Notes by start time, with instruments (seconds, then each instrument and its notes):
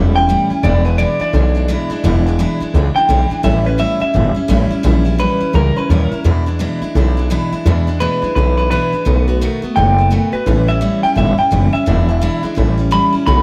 Already playing: upright bass E1, steel-string acoustic guitar E3 G3 C#4 E4
0.15 steel-string acoustic guitar G3 C#4 E4, clean electric guitar G5
0.29 steel-string acoustic guitar A2 E3 G3 C#4 E4
0.50 steel-string acoustic guitar G3 C#4 E4, muted upright bass stroke
0.63 upright bass E1, steel-string acoustic guitar E2 B2 E3 G#3 D4 E4, clean electric guitar D5
0.85 steel-string acoustic guitar E3 G#3 D4 E4, clean electric guitar B4
0.98 steel-string acoustic guitar E2 B2 E3 G#3 D4 E4, clean electric guitar D5
1.20 steel-string acoustic guitar E3 G#3 D4 E4, clean electric guitar D5, muted upright bass stroke
1.33 upright bass B1, steel-string acoustic guitar E3 G#3 D4 E4
1.55 steel-string acoustic guitar E3 G#3 D4 E4
1.68 steel-string acoustic guitar E2 B2 E3 G#3 D4 E4
1.90 steel-string acoustic guitar E3 G#3 D4 E4, muted upright bass stroke
2.04 upright bass E1, steel-string acoustic guitar E2 B2 E3 G#3 D4 E4
2.26 steel-string acoustic guitar E3 G#3 D4 E4
2.39 steel-string acoustic guitar E2 B2 E3 G#3 D4 E4
2.60 steel-string acoustic guitar E3 G#3 D4 E4, muted upright bass stroke
2.74 upright bass C#2, steel-string acoustic guitar E3 G#3 D4 E4
2.96 steel-string acoustic guitar E3 G#3 D4 E4, clean electric guitar G5, muted upright bass stroke
3.09 upright bass B1, steel-string acoustic guitar E2 B2 E3 G#3 D4 E4
3.30 steel-string acoustic guitar E3 G#3 D4 E4, muted upright bass stroke
3.43 upright bass A1, steel-string acoustic guitar A2 E3 G3 C#4 E4, clean electric guitar E5
3.65 steel-string acoustic guitar G3 C#4 E4, clean electric guitar B4
3.78 steel-string acoustic guitar A2 E3 G3 C#4 E4, clean electric guitar E5
4.00 steel-string acoustic guitar G3 C#4 E4, clean electric guitar E5, muted upright bass stroke
4.14 upright bass G1, steel-string acoustic guitar E3 G3 C#4 E4
4.35 steel-string acoustic guitar G3 C#4 E4, muted upright bass stroke
4.48 upright bass A1, steel-string acoustic guitar A2 E3 G3 C#4 E4
4.71 steel-string acoustic guitar G3 C#4 E4, muted upright bass stroke
4.83 upright bass A#1, steel-string acoustic guitar A#2 E3 G3 C#4 E4
5.05 steel-string acoustic guitar G3 C#4 E4
5.18 steel-string acoustic guitar A#2 E3 G3 C#4 E4, clean electric guitar B4
5.40 steel-string acoustic guitar G3 C#4 E4, muted upright bass stroke
5.53 upright bass C#2, steel-string acoustic guitar E3 G3 C#4 E4, clean electric guitar A#4
5.76 steel-string acoustic guitar G3 C#4 E4, clean electric guitar B4, muted upright bass stroke
5.89 upright bass D#2, steel-string acoustic guitar A#2 E3 G3 C#4 E4, clean electric guitar A#4
6.12 steel-string acoustic guitar G3 C#4 E4, muted upright bass stroke
6.24 steel-string acoustic guitar E2 B2 E3 G#3 D4 E4, upright bass E2
6.46 steel-string acoustic guitar E3 G#3 D4 E4
6.59 steel-string acoustic guitar E2 B2 E3 G#3 D4 E4
6.82 steel-string acoustic guitar E3 G#3 D4 E4, muted upright bass stroke
6.95 upright bass B1, steel-string acoustic guitar E3 G#3 D4 E4
7.17 steel-string acoustic guitar E3 G#3 D4 E4
7.30 steel-string acoustic guitar E2 B2 E3 G#3 D4 E4
7.52 steel-string acoustic guitar E3 G#3 D4 E4, muted upright bass stroke
7.65 upright bass E2, steel-string acoustic guitar E2 B2 E3 G#3 D4 E4
7.87 steel-string acoustic guitar E3 G#3 D4 E4
8.00 steel-string acoustic guitar E2 B2 E3 G#3 D4 E4, clean electric guitar B4
8.22 steel-string acoustic guitar E3 G#3 D4 E4, muted upright bass stroke
8.35 upright bass B1, steel-string acoustic guitar E3 G#3 D4 E4, clean electric guitar B4
8.57 steel-string acoustic guitar E3 G#3 D4 E4, clean electric guitar B4
8.71 steel-string acoustic guitar E2 B2 E3 G#3 D4 E4, clean electric guitar B4
8.93 steel-string acoustic guitar E3 G#3 D4 E4, muted upright bass stroke
9.05 upright bass B1, steel-string acoustic guitar B2 D#3 A3 B3 F#4
9.28 steel-string acoustic guitar A3 B3 F#4
9.41 steel-string acoustic guitar B2 D#3 A3 B3 F#4
9.62 steel-string acoustic guitar A3 B3 F#4, muted upright bass stroke
9.76 upright bass F#1, steel-string acoustic guitar D#3 A3 B3 F#4, clean electric guitar G5
9.98 steel-string acoustic guitar A3 B3 F#4
10.11 steel-string acoustic guitar B2 D#3 A3 B3 F#4
10.32 steel-string acoustic guitar A3 B3 F#4, clean electric guitar B4, muted upright bass stroke
10.46 upright bass A1, steel-string acoustic guitar A2 E3 G3 C#4 E4
10.68 steel-string acoustic guitar G3 C#4 E4, clean electric guitar E5
10.81 steel-string acoustic guitar A2 E3 G3 C#4 E4
11.03 steel-string acoustic guitar G3 C#4 E4, clean electric guitar G5, muted upright bass stroke
11.16 upright bass G1, steel-string acoustic guitar E3 G3 C#4 E4, clean electric guitar E5
11.38 steel-string acoustic guitar G3 C#4 E4, clean electric guitar G5, muted upright bass stroke
11.51 upright bass F#1, steel-string acoustic guitar A2 E3 G3 C#4 E4
11.73 steel-string acoustic guitar G3 C#4 E4, clean electric guitar E5, muted upright bass stroke
11.86 upright bass E1, steel-string acoustic guitar E2 B2 E3 G#3 D4 E4
12.09 steel-string acoustic guitar E3 G#3 D4 E4
12.21 steel-string acoustic guitar E2 B2 E3 G#3 D4 E4
12.43 steel-string acoustic guitar E3 G#3 D4 E4, muted upright bass stroke
12.55 upright bass A1, steel-string acoustic guitar E3 G3 C#4 E4
12.78 steel-string acoustic guitar G3 C#4 E4
12.91 steel-string acoustic guitar A2 E3 G3 C#4 E4, clean electric guitar B5
13.13 steel-string acoustic guitar G3 C#4 E4, muted upright bass stroke
13.26 upright bass B1, steel-string acoustic guitar B2 D#3 A3 B3 F#4, clean electric guitar B5